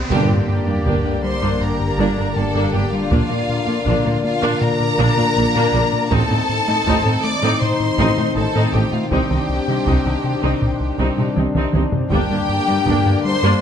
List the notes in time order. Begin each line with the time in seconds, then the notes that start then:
Already playing: D#3 C4, riser
0.11 G1 G2 D3 G3 A#3 D4 G4 D5 G5, taiko, sub drop
0.29 G2 A#3 D4
0.49 G2
0.67 G2 G3 A#3 D4
0.86 G1 G2 G3 A#3 D4, taiko
1.05 G2 A#3 D4
1.24 G3 C5 C6
1.42 G2 G3 A#3 D4
1.61 G2 A#4 A#5
1.80 G2
1.99 G1 G2 G3 A#3 D4
2.17 G2 G3 A#3 D4
2.36 G1 G2 A#3 D4 G4 A4 A5
2.55 G2 G3 A#3 D4
2.74 G1 G2 A#3 D4 G4 G5
2.92 G3 F4 F5
3.11 A#1 A#2 A#3 D4 F4, taiko
3.30 A#2 A#3 D4
3.49 A#2
3.67 A#2 A#3 D4 F4
3.86 A#1 A#2 A#3 D4, taiko
4.04 A#2 A#3 D4
4.24 A#3 F4 F5
4.42 A#2 A#3 D4
4.61 A#2 A#4 A#5, taiko low-mid
4.80 A#2
4.98 A#1 A#2 A#3 D4
5.17 A#2 A#3 D4 F4, taiko low-mid
5.36 A#1 A#2 A#3 D4 A#4
5.55 A#2 A#3 D4
5.73 A#1 A#2 A#3 D4 A#4
5.93 A#3, taiko low-mid
6.11 A1 A2 D#3 A3 C4 D#4 A4 C5 A5, taiko
6.30 A2 C4 D#4
6.49 A2
6.67 A2 A3 C4 D#4
6.86 A1 A2 A3 C4 D#4, taiko
7.05 A2 C4 D#4
7.23 A3 D5 D6
7.42 A2 A3 C4 D#4
7.61 A2 C5 C6, taiko low-mid
7.80 A2
7.98 A1 A2 A3 C4 D#4
8.17 A2 A3 C4 D#4, taiko low-mid
8.35 A1 A2 C4 D#4 A4 A5
8.54 A2 A3 C4 D#4
8.74 A1 A2 C4 D#4 G4 A4 G5
8.93 A3 F4 F5, taiko low-mid
9.11 C2 C3 C4 D4 D#4 G4 G5, taiko
9.31 C2 C3 D#3 C4 D#4
9.49 C2
9.68 C3 G3 C4 D#4
9.86 C2 C3 C4 D#4, taiko
10.05 C2 C3 D#3 C4 D#4
10.24 C3
10.43 C2 C3 C4 D#4
10.62 C2, taiko low-mid
10.80 C2
10.99 C2 C3 C4 D#4
11.18 C3 G3 C4 D#4, taiko low-mid
11.36 C2 C3 C4 D#4, taiko mid
11.55 C2 C3 C4 D#4, taiko mid
11.74 C2 C3 C4 D#4, taiko mid
11.92 C3, taiko low
12.11 G1 G2 D3 G3 A#3 D4 G4 D5 G5, taiko
12.30 G2 A#3 D4
12.49 G2
12.68 G2 G3 A#3 D4
12.86 G1 G2 G3 A#3 D4, taiko
13.05 G2 A#3 D4
13.24 G3 C5 C6
13.43 G2 G3 A#3 D4